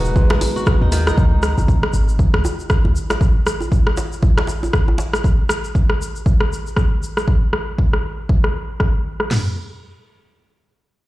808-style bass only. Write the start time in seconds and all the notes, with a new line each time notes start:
Already playing: D#1
0.30 G#1
0.81 D#2
1.18 C#2
1.58 G#1
1.93 G#1
2.34 C#2
2.85 C#2